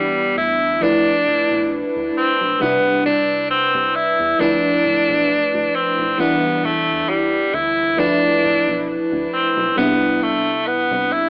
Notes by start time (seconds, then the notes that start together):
Already playing: E3 G3 B3 D4 E4
0.37 D2 E4
0.81 F3 A3 D4 E4 B4
1.27 D1
1.51 B1
1.96 D2
2.17 C4
2.41 B1
2.60 C3 G3 B3 D4 E4 B4
3.06 C2 D4
3.51 C4
3.75 C2
3.96 E4
4.20 E2
4.39 D2 F3 A3 D4 E4 B4
4.85 D1
5.09 B1
5.54 D2
5.75 C4
5.99 B1
6.17 E3 G3 B3 D4 E4
6.64 E1 A3
6.88 E2
7.09 G3
7.54 D2 E4
7.97 F3 A3 D4 E4 B4
8.43 D1
8.67 B1
9.12 D2
9.33 C4
9.57 B1
9.76 C2 C3 G3 B3 D4 E4
10.22 A3
10.67 B3
10.91 C2
11.12 E4